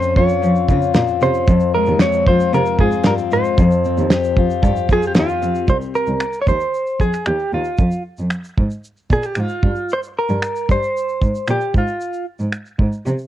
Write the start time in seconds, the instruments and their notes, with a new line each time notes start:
Already playing: steel-string acoustic guitar F2 C4 C#4 F4, clean electric guitar C5
0.02 shaker
0.16 cello F2, steel-string acoustic guitar F4, clean electric guitar C#5, kick
0.29 shaker
0.42 cello F3, shaker
0.55 shaker
0.69 cello C#3, steel-string acoustic guitar F4, kick, shaker
0.82 shaker
0.94 cello A#2, steel-string acoustic guitar C4, snare, clap, shaker
1.08 shaker
1.21 cello C3, steel-string acoustic guitar C#4, clean electric guitar C5, shaker
1.34 shaker
1.48 cello F2, steel-string acoustic guitar F2, kick, shaker
1.60 shaker
1.75 steel-string acoustic guitar G#3, clean electric guitar A#4
1.86 cello D#2, shaker
2.00 steel-string acoustic guitar C4, clean electric guitar C#5, snare, clap, shaker
2.13 shaker
2.27 cello F2, steel-string acoustic guitar F4, clean electric guitar C5, kick
2.40 shaker
2.53 cello C3, steel-string acoustic guitar C4, clean electric guitar A#4, shaker
2.66 shaker
2.79 cello G#2, steel-string acoustic guitar F4, clean electric guitar G#4, kick
2.92 shaker
3.04 cello G2, steel-string acoustic guitar C4, clean electric guitar A#4, snare, clap, shaker
3.18 shaker
3.31 cello G#2, steel-string acoustic guitar G#3, clean electric guitar C5, shaker
3.44 shaker
3.58 cello F2, steel-string acoustic guitar F2, kick, shaker
3.71 shaker
3.85 steel-string acoustic guitar C4, shaker
3.98 cello D#2, shaker
4.10 steel-string acoustic guitar G4, snare, clap, shaker
4.24 shaker
4.36 cello F2, steel-string acoustic guitar F4, kick
4.50 shaker
4.63 cello G2, steel-string acoustic guitar G4, kick, shaker
4.76 shaker
4.89 cello F2, steel-string acoustic guitar F4, clean electric guitar G#4, kick, shaker
5.02 shaker
5.07 clean electric guitar G4
5.15 cello D#2, steel-string acoustic guitar G4, snare, clap, shaker
5.19 clean electric guitar F4
5.29 shaker
5.42 cello F2, steel-string acoustic guitar C4, shaker
5.55 shaker
5.68 cello C2, clean electric guitar C5, kick, shaker
5.81 shaker
5.95 clean electric guitar A#4, shaker
6.07 cello C2, shaker
6.20 finger snap, shaker
6.33 shaker
6.42 clean electric guitar C#5
6.47 cello D#2, clean electric guitar C5, kick, shaker
6.60 shaker
6.74 shaker
6.86 shaker
7.00 cello F2, clean electric guitar G#4, kick, shaker
7.13 finger snap, shaker
7.26 cello D#2, clean electric guitar G4, finger snap, shaker
7.39 shaker
7.53 cello D#2, clean electric guitar F4
7.64 shaker
7.78 cello F2, kick, shaker
7.91 shaker
8.18 cello F2, shaker
8.31 finger snap, shaker
8.44 shaker
8.58 cello G#2, kick
8.71 shaker
8.85 shaker
8.97 shaker
9.10 cello A#2, clean electric guitar G#4, kick, shaker
9.23 clean electric guitar G4, finger snap, shaker
9.35 cello G#2, finger snap, shaker
9.40 clean electric guitar F4
9.49 shaker
9.63 cello G2, kick
9.76 shaker
9.90 clean electric guitar C5, shaker
10.03 shaker
10.19 clean electric guitar A#4
10.29 cello G2, shaker
10.42 finger snap, shaker
10.56 shaker
10.69 cello G2, clean electric guitar C5, kick, shaker
10.83 shaker
10.97 shaker
11.09 shaker
11.21 cello G#2, kick, shaker
11.35 shaker
11.47 cello A#2, clean electric guitar G4, finger snap, shaker
11.61 shaker
11.74 cello G#2, clean electric guitar F4, kick, shaker
11.87 shaker
12.01 shaker
12.13 shaker
12.39 cello G#2, shaker
12.52 finger snap, shaker
12.65 shaker
12.79 cello G#2, kick
12.92 shaker
13.06 cello C3, shaker
13.18 shaker